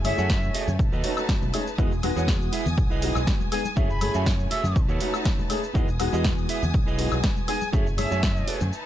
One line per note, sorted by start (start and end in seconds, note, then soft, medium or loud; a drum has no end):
0.00 0.12 F#1 loud
0.00 0.78 A3 medium
0.00 0.76 G#5 medium
0.04 0.14 A3 loud
0.04 0.14 C#4 medium
0.04 0.15 E4 medium
0.04 0.15 G#4 loud
0.04 0.75 E5 loud
0.04 muted clean electric guitar stroke soft
0.04 open hi-hat loud
0.04 high conga loud
0.04 high woodblock medium
0.04 shaker medium
0.17 0.50 F#2 medium
0.17 0.77 A3 loud
0.17 0.78 C#4 medium
0.17 0.78 E4 medium
0.17 0.36 F#4 medium
0.17 0.36 G#4 medium
0.17 0.36 A4 medium
0.17 0.37 F#5 loud
0.17 0.78 G#5 loud
0.17 shaker soft
0.17 maracas medium
0.30 kick loud
0.30 snare loud
0.30 maracas medium
0.30 shaker soft
0.43 shaker soft
0.43 maracas soft
0.54 0.67 F#4 medium
0.54 0.67 G#4 medium
0.54 0.68 A4 medium
0.54 0.68 E5 loud
0.54 muted fingered electric bass stroke soft
0.54 open hi-hat medium
0.54 shaker medium
0.68 0.77 F#2 medium
0.68 low conga medium
0.68 shaker soft
0.68 maracas medium
0.79 0.89 B1 medium
0.79 1.78 D#4 medium
0.79 1.78 B4 medium
0.79 1.78 A5 medium
0.79 kick loud
0.79 shaker soft
0.79 maracas medium
0.92 1.01 D#2 loud
0.92 1.23 F#4 loud
0.92 1.23 A4 loud
0.92 1.23 B4 loud
0.92 1.23 D#5 loud
0.92 shaker soft
0.92 maracas soft
1.03 1.13 A3 medium
1.03 1.14 C#4 medium
1.03 1.14 D#4 medium
1.03 1.14 F#4 medium
1.03 open hi-hat loud
1.03 shaker medium
1.17 1.51 A3 medium
1.17 1.51 C#4 medium
1.17 1.51 D#4 medium
1.17 1.51 F#4 medium
1.17 high woodblock medium
1.17 shaker soft
1.17 maracas medium
1.29 kick loud
1.29 snare loud
1.29 maracas medium
1.29 shaker soft
1.42 1.51 B1 medium
1.42 high conga medium
1.42 low conga medium
1.42 shaker soft
1.42 maracas soft
1.54 1.63 A3 medium
1.54 1.63 C#4 medium
1.54 1.64 D#4 medium
1.54 1.64 G#4 loud
1.54 open hi-hat medium
1.54 high woodblock medium
1.54 shaker medium
1.67 maracas medium
1.67 shaker soft
1.78 1.88 E2 loud
1.78 1.88 G#3 loud
1.78 1.88 B3 medium
1.78 1.88 D#4 medium
1.78 1.91 E4 loud
1.78 1.88 F#4 loud
1.78 1.92 G#4 loud
1.78 1.92 B4 loud
1.78 1.92 D#5 loud
1.78 4.73 G#5 medium
1.78 3.75 D#6 medium
1.78 kick loud
1.78 maracas medium
1.78 shaker soft
1.92 2.10 E1 loud
1.92 maracas soft
1.92 shaker soft
2.03 2.13 G#3 loud
2.03 2.13 B3 medium
2.03 2.13 D#4 medium
2.03 2.13 F#4 loud
2.03 muted clean electric guitar stroke soft
2.03 open hi-hat loud
2.03 high conga medium
2.03 high woodblock medium
2.03 shaker medium
2.16 2.48 E2 medium
2.16 2.99 G#3 loud
2.16 3.00 B3 medium
2.16 2.34 E4 medium
2.16 3.00 F#4 loud
2.16 2.34 G#4 medium
2.16 2.35 B4 medium
2.16 2.35 C#5 loud
2.16 shaker soft
2.16 maracas medium
2.28 kick loud
2.28 snare loud
2.28 shaker soft
2.28 maracas medium
2.41 shaker soft
2.41 maracas soft
2.52 2.66 E4 loud
2.52 2.66 G#4 medium
2.52 2.66 B4 medium
2.52 2.66 E5 loud
2.52 open hi-hat medium
2.52 shaker medium
2.66 2.75 E2 medium
2.66 low conga medium
2.66 shaker soft
2.66 maracas medium
2.78 3.11 B1 medium
2.78 kick loud
2.78 maracas medium
2.78 shaker soft
2.90 3.21 E4 loud
2.90 3.21 G#4 loud
2.90 3.21 B4 loud
2.90 3.22 D#5 loud
2.90 shaker soft
2.90 maracas soft
3.02 3.12 G#3 medium
3.02 3.12 B3 medium
3.02 3.12 D#4 medium
3.02 3.13 F#4 medium
3.02 open hi-hat loud
3.02 shaker medium
3.15 3.24 B1 loud
3.15 3.49 G#3 medium
3.15 3.49 B3 medium
3.15 3.50 F#4 medium
3.15 high woodblock medium
3.15 shaker soft
3.15 maracas medium
3.27 kick loud
3.27 snare loud
3.27 maracas medium
3.27 shaker soft
3.40 high conga loud
3.40 shaker soft
3.40 maracas soft
3.52 3.62 G#3 medium
3.52 3.62 B3 medium
3.52 3.62 D#4 medium
3.52 3.62 G#4 loud
3.52 3.72 G#5 loud
3.52 muted clean electric guitar stroke soft
3.52 open hi-hat medium
3.52 high woodblock medium
3.52 shaker medium
3.65 high conga medium
3.65 maracas medium
3.65 shaker soft
3.76 3.87 F#2 loud
3.76 3.86 A3 loud
3.76 4.75 A3 medium
3.76 3.87 C#4 medium
3.76 3.87 E4 medium
3.76 3.90 F#4 loud
3.76 3.90 G#4 loud
3.76 3.87 G#4 loud
3.76 3.90 A4 loud
3.76 3.90 E5 loud
3.76 kick loud
3.76 maracas medium
3.76 shaker soft
3.90 4.09 F#1 loud
3.90 4.26 B5 loud
3.90 shaker soft
3.90 maracas soft
4.01 4.11 A3 loud
4.01 4.11 C#4 medium
4.01 4.12 E4 medium
4.01 4.12 G#4 loud
4.01 open hi-hat loud
4.01 high conga medium
4.01 high woodblock medium
4.01 shaker medium
4.14 4.47 F#2 medium
4.14 4.74 A3 loud
4.14 4.75 C#4 medium
4.14 4.75 E4 medium
4.14 4.33 F#4 loud
4.14 4.33 G#4 medium
4.14 4.33 A4 medium
4.14 4.33 E5 loud
4.14 4.75 G#5 loud
4.14 maracas medium
4.14 shaker soft
4.26 kick loud
4.26 snare loud
4.26 maracas medium
4.26 shaker soft
4.39 maracas soft
4.39 shaker soft
4.51 4.64 F#4 medium
4.51 4.64 G#4 medium
4.51 4.64 A4 medium
4.51 4.64 E5 loud
4.51 4.81 E6 loud
4.51 muted fingered electric bass stroke soft
4.51 open hi-hat medium
4.51 shaker medium
4.64 4.73 F#2 medium
4.64 low conga medium
4.64 shaker soft
4.64 maracas medium
4.75 4.86 B1 medium
4.75 5.74 D#4 medium
4.75 5.74 B4 medium
4.75 5.74 A5 medium
4.75 muted clean electric guitar stroke soft
4.75 kick loud
4.75 shaker soft
4.75 maracas medium
4.88 4.98 D#2 loud
4.88 5.19 F#4 loud
4.88 5.20 A4 loud
4.88 5.20 B4 loud
4.88 5.20 C#5 loud
4.88 shaker soft
4.88 maracas soft
5.01 5.10 A3 medium
5.01 5.11 C#4 medium
5.01 5.11 D#4 medium
5.01 5.11 F#4 medium
5.01 open hi-hat loud
5.01 shaker medium
5.14 5.47 A3 medium
5.14 5.47 C#4 medium
5.14 5.48 D#4 medium
5.14 5.48 F#4 medium
5.14 high woodblock medium
5.14 shaker soft
5.14 maracas medium
5.25 kick loud
5.25 snare loud
5.25 shaker soft
5.25 maracas medium
5.39 high conga medium
5.39 low conga medium
5.39 shaker soft
5.39 maracas soft
5.50 5.60 A3 medium
5.50 5.60 C#4 medium
5.50 5.60 D#4 medium
5.50 5.60 G#4 loud
5.50 muted clean electric guitar stroke soft
5.50 open hi-hat medium
5.50 high woodblock medium
5.50 shaker medium
5.63 shaker soft
5.63 maracas medium
5.74 5.85 E2 loud
5.74 5.85 G#3 loud
5.74 5.85 B3 medium
5.74 5.85 D#4 medium
5.74 5.88 E4 loud
5.74 5.85 F#4 loud
5.74 5.88 G#4 loud
5.74 5.88 B4 loud
5.74 5.88 D#5 loud
5.74 8.70 G#5 medium
5.74 7.72 D#6 medium
5.74 kick loud
5.74 shaker soft
5.74 maracas medium
5.88 6.07 E1 loud
5.88 shaker soft
5.88 maracas soft
5.99 6.09 G#3 loud
5.99 6.10 B3 medium
5.99 6.10 D#4 medium
5.99 6.10 F#4 loud
5.99 muted clean electric guitar stroke soft
5.99 open hi-hat loud
5.99 high conga medium
5.99 high woodblock medium
5.99 shaker medium
6.12 6.45 E2 medium
6.12 6.96 G#3 loud
6.12 6.96 B3 medium
6.12 6.31 E4 medium
6.12 6.97 F#4 loud
6.12 6.31 G#4 medium
6.12 6.31 B4 medium
6.12 6.31 D#5 loud
6.12 shaker soft
6.12 maracas medium
6.24 kick loud
6.24 snare loud
6.24 maracas medium
6.24 shaker soft
6.38 shaker soft
6.38 maracas soft
6.49 6.62 E4 loud
6.49 6.62 G#4 medium
6.49 6.63 B4 medium
6.49 6.63 E5 loud
6.49 open hi-hat medium
6.49 shaker medium
6.63 6.72 E2 medium
6.63 low conga medium
6.63 shaker soft
6.63 maracas medium
6.74 7.07 B1 medium
6.74 kick loud
6.74 shaker soft
6.74 maracas medium
6.86 7.18 E4 loud
6.86 7.18 G#4 loud
6.86 7.18 B4 loud
6.86 7.18 D#5 loud
6.86 maracas soft
6.86 shaker soft
6.98 7.08 G#3 medium
6.98 7.09 B3 medium
6.98 7.09 D#4 medium
6.98 7.09 F#4 medium
6.98 open hi-hat loud
6.98 shaker medium
7.12 7.21 B1 loud
7.12 7.46 G#3 medium
7.12 7.46 B3 medium
7.12 7.46 F#4 medium
7.12 high woodblock medium
7.12 maracas medium
7.12 shaker soft
7.24 kick loud
7.24 snare loud
7.24 maracas medium
7.24 shaker soft
7.36 high conga medium
7.36 maracas soft
7.36 shaker soft
7.48 7.58 G#3 medium
7.48 7.58 B3 medium
7.48 7.58 D#4 medium
7.48 7.58 G#4 loud
7.48 7.68 G#5 loud
7.48 muted clean electric guitar stroke soft
7.48 open hi-hat medium
7.48 high woodblock medium
7.48 shaker medium
7.61 high conga medium
7.61 maracas medium
7.61 shaker soft
7.73 7.83 F#2 loud
7.73 7.83 A3 loud
7.73 8.72 A3 medium
7.73 7.83 C#4 medium
7.73 7.83 E4 medium
7.73 7.86 F#4 loud
7.73 7.86 G#4 loud
7.73 7.83 G#4 loud
7.73 7.86 A4 loud
7.73 7.87 E5 loud
7.73 kick loud
7.73 maracas medium
7.73 shaker medium
7.87 8.05 F#1 loud
7.87 shaker soft
7.87 maracas soft
7.97 8.08 A3 loud
7.97 8.08 C#4 medium
7.97 8.08 E4 medium
7.97 8.08 G#4 loud
7.97 8.68 E5 loud
7.97 muted clean electric guitar stroke soft
7.97 open hi-hat loud
7.97 high conga medium
7.97 high woodblock medium
7.97 shaker medium
8.10 8.43 F#2 medium
8.10 8.71 A3 loud
8.10 8.71 C#4 medium
8.10 8.71 E4 medium
8.10 8.29 F#4 loud
8.10 8.29 G#4 medium
8.10 8.30 A4 medium
8.10 8.30 E5 loud
8.10 8.72 G#5 loud
8.10 shaker soft
8.10 maracas medium
8.23 kick loud
8.23 snare loud
8.23 shaker soft
8.23 maracas medium
8.36 shaker soft
8.36 maracas soft
8.47 8.61 F#4 medium
8.47 8.61 G#4 medium
8.47 8.61 A4 medium
8.47 8.61 B4 loud
8.47 muted fingered electric bass stroke soft
8.47 open hi-hat medium
8.47 shaker medium
8.61 8.70 F#2 medium
8.61 low conga medium
8.61 maracas medium
8.61 shaker soft
8.72 8.86 D#4 medium
8.72 8.86 B4 medium
8.72 8.86 A5 medium
8.72 muted clean electric guitar stroke soft
8.72 shaker soft
8.72 maracas medium